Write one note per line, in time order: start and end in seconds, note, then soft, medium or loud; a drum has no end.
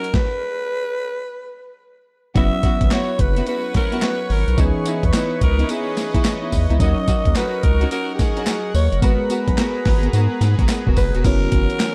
0.00 0.10 D#4 medium
0.00 0.11 A#4 medium
0.00 0.17 A#4 loud
0.00 0.11 F#5 medium
0.04 closed hi-hat medium
0.14 1.81 B4 loud
0.14 kick loud
0.14 snare medium
2.35 2.50 F#1 loud
2.35 4.54 F#3 medium
2.35 2.51 B3 medium
2.35 4.54 C#4 medium
2.35 2.51 E4 medium
2.35 4.55 E4 medium
2.35 2.52 F#4 loud
2.35 4.56 B4 medium
2.35 4.55 B4 medium
2.35 6.76 C#5 medium
2.35 2.94 E5 loud
2.35 4.56 F#5 medium
2.35 8.98 C#6 medium
2.35 kick loud
2.35 closed hi-hat medium
2.63 2.79 B3 medium
2.63 2.79 E4 medium
2.63 2.79 F#4 medium
2.63 kick loud
2.63 closed hi-hat medium
2.81 2.89 G#1 loud
2.81 kick medium
2.81 closed hi-hat medium
2.91 3.07 B3 medium
2.91 3.07 E4 medium
2.91 3.07 F#4 medium
2.91 3.22 C#5 loud
2.91 snare loud
2.91 clap medium
2.91 closed hi-hat medium
3.19 3.42 F#1 medium
3.19 3.48 B4 loud
3.19 kick loud
3.19 closed hi-hat medium
3.36 3.45 B3 medium
3.36 3.46 E4 medium
3.36 3.46 F#4 medium
3.36 closed hi-hat medium
3.47 3.62 B3 medium
3.47 3.62 E4 medium
3.47 3.63 F#4 medium
3.47 3.74 B4 loud
3.47 closed hi-hat medium
3.74 4.06 A#4 medium
3.74 kick medium
3.74 snare medium
3.74 closed hi-hat medium
3.92 4.01 B3 medium
3.92 4.01 E4 medium
3.92 4.01 F#4 medium
3.92 closed hi-hat medium
4.02 4.34 B4 medium
4.02 snare loud
4.02 clap medium
4.02 closed hi-hat medium
4.30 4.44 G#1 medium
4.30 4.62 A#4 medium
4.30 open hi-hat medium
4.48 4.56 B1 medium
4.48 closed hi-hat soft
4.57 4.72 C#2 loud
4.57 6.76 E3 medium
4.57 4.73 B3 loud
4.57 6.76 C#4 medium
4.57 4.74 D#4 medium
4.57 6.77 D#4 medium
4.57 4.74 E4 loud
4.57 5.07 G#4 medium
4.57 6.78 B4 medium
4.57 6.77 B4 medium
4.57 8.98 D#5 medium
4.57 kick loud
4.57 closed hi-hat medium
4.57 tambourine medium
4.85 5.01 B3 medium
4.85 5.01 D#4 medium
4.85 5.01 E4 medium
4.85 closed hi-hat medium
4.85 tambourine medium
5.03 5.12 E2 loud
5.03 5.42 B4 loud
5.03 kick medium
5.03 closed hi-hat medium
5.13 5.29 B3 medium
5.13 5.29 D#4 medium
5.13 5.29 E4 medium
5.13 snare loud
5.13 clap medium
5.13 closed hi-hat medium
5.13 tambourine loud
5.41 5.64 C#2 medium
5.41 5.72 A#4 medium
5.41 kick loud
5.41 closed hi-hat medium
5.58 5.67 B3 medium
5.58 5.68 D#4 medium
5.58 5.68 E4 medium
5.58 closed hi-hat medium
5.68 5.84 B3 medium
5.68 5.85 D#4 medium
5.68 5.85 E4 medium
5.68 6.53 G#4 medium
5.68 closed hi-hat medium
5.68 tambourine medium
5.97 snare medium
5.97 closed hi-hat medium
5.97 tambourine medium
6.14 6.23 B3 medium
6.14 6.23 D#4 medium
6.14 6.23 E4 medium
6.14 kick medium
6.14 closed hi-hat medium
6.25 snare loud
6.25 clap medium
6.25 closed hi-hat medium
6.25 tambourine medium
6.42 6.51 B3 medium
6.42 6.51 D#4 medium
6.42 6.51 E4 medium
6.52 6.67 E2 medium
6.52 kick medium
6.52 open hi-hat medium
6.52 tambourine medium
6.70 6.78 C#2 loud
6.70 6.79 B3 medium
6.70 6.79 D#4 medium
6.70 6.79 E4 medium
6.70 closed hi-hat soft
6.79 6.94 D#2 loud
6.79 8.98 F#3 medium
6.79 6.95 C#4 loud
6.79 8.98 C#4 medium
6.79 6.96 D#4 medium
6.79 8.99 D#4 medium
6.79 6.96 F#4 loud
6.79 9.00 A#4 medium
6.79 8.99 A#4 medium
6.79 7.38 D#5 loud
6.79 11.21 F#5 medium
6.79 kick loud
6.79 closed hi-hat medium
6.79 tambourine medium
7.07 7.23 C#4 medium
7.07 7.24 D#4 medium
7.07 7.24 F#4 medium
7.07 kick loud
7.07 closed hi-hat medium
7.07 tambourine medium
7.25 7.34 D#2 loud
7.25 kick loud
7.25 closed hi-hat medium
7.35 7.51 C#4 medium
7.35 7.51 D#4 medium
7.35 7.51 F#4 medium
7.35 7.66 B4 loud
7.35 snare loud
7.35 clap medium
7.35 closed hi-hat medium
7.35 tambourine medium
7.63 7.86 C#2 loud
7.63 7.91 A#4 medium
7.63 kick loud
7.63 closed hi-hat medium
7.81 7.90 C#4 medium
7.81 7.90 D#4 medium
7.81 7.90 F#4 medium
7.81 closed hi-hat medium
7.91 8.07 C#4 medium
7.91 8.07 D#4 medium
7.91 8.07 F#4 medium
7.91 8.13 A#4 loud
7.91 closed hi-hat medium
7.91 tambourine medium
8.15 8.21 G4 medium
8.19 8.75 G#4 loud
8.19 kick medium
8.19 snare medium
8.19 closed hi-hat medium
8.19 tambourine medium
8.36 8.45 C#4 medium
8.36 8.46 D#4 medium
8.36 8.46 F#4 medium
8.36 closed hi-hat medium
8.47 snare loud
8.47 clap loud
8.47 closed hi-hat medium
8.47 tambourine medium
8.74 8.89 D#2 medium
8.74 9.01 C#5 loud
8.74 open hi-hat medium
8.74 tambourine medium
8.92 9.00 F#1 medium
8.92 closed hi-hat medium
9.02 9.17 G#1 loud
9.02 11.20 G#3 medium
9.02 9.18 B3 loud
9.02 11.21 B3 medium
9.02 9.18 F#4 medium
9.02 11.21 F#4 medium
9.02 11.23 G#4 medium
9.02 9.18 A#4 loud
9.02 11.23 B4 medium
9.02 10.65 B4 medium
9.02 11.22 B4 medium
9.02 11.23 A#5 medium
9.02 kick loud
9.02 closed hi-hat medium
9.02 tambourine medium
9.30 9.46 B3 medium
9.30 9.46 F#4 medium
9.30 9.46 A#4 medium
9.30 closed hi-hat medium
9.30 tambourine medium
9.48 9.56 B1 loud
9.48 kick medium
9.48 closed hi-hat medium
9.57 9.73 B3 medium
9.57 9.73 F#4 medium
9.57 9.74 A#4 medium
9.57 snare loud
9.57 clap medium
9.57 closed hi-hat medium
9.57 tambourine medium
9.85 10.08 G#1 loud
9.85 kick loud
9.85 snare medium
9.85 open hi-hat medium
10.03 10.12 B3 medium
10.03 10.12 F#4 medium
10.03 10.12 A#4 medium
10.03 closed hi-hat medium
10.13 10.28 G#2 loud
10.13 10.29 B3 medium
10.13 10.29 F#4 medium
10.13 10.29 A#4 medium
10.13 closed hi-hat medium
10.13 tambourine medium
10.41 10.55 G#2 loud
10.41 snare medium
10.41 closed hi-hat medium
10.41 tambourine medium
10.59 10.67 G#1 medium
10.59 10.68 B3 medium
10.59 10.68 F#4 medium
10.59 10.68 A#4 medium
10.59 kick loud
10.59 closed hi-hat medium
10.69 snare loud
10.69 clap loud
10.69 closed hi-hat medium
10.69 tambourine medium
10.86 10.95 E1 medium
10.86 10.96 B3 medium
10.86 10.96 F#4 medium
10.86 10.96 A#4 medium
10.86 kick loud
10.97 11.11 F#1 medium
10.97 11.27 B4 loud
10.97 kick medium
10.97 open hi-hat medium
10.97 tambourine medium
11.14 11.23 E1 loud
11.14 11.23 B3 medium
11.14 11.23 F#4 medium
11.14 11.24 A#4 medium
11.14 closed hi-hat soft
11.24 11.47 F#1 loud
11.24 11.95 E3 medium
11.24 11.95 F#3 medium
11.24 11.95 B3 medium
11.24 11.95 C#4 medium
11.24 11.95 E4 medium
11.24 11.95 F#4 loud
11.24 11.95 F#4 medium
11.24 11.95 A#4 loud
11.24 11.95 C#5 medium
11.24 kick loud
11.24 closed hi-hat medium
11.24 crash loud
11.24 tambourine medium
11.52 11.66 F#1 loud
11.52 kick loud
11.52 closed hi-hat medium
11.70 closed hi-hat medium
11.80 snare loud
11.80 clap medium
11.80 closed hi-hat medium
11.80 tambourine medium